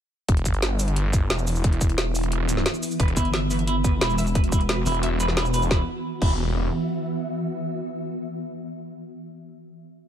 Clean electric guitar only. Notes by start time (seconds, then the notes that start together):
3.00 B4
3.17 E4
3.34 E5
3.51 B4
3.67 E4
3.84 B4
4.01 E4
4.18 E5
4.35 B4
4.52 E4
4.69 B4
4.86 E4
5.03 E5
5.20 B4
5.37 E4
5.54 B4
5.71 E4
6.22 E4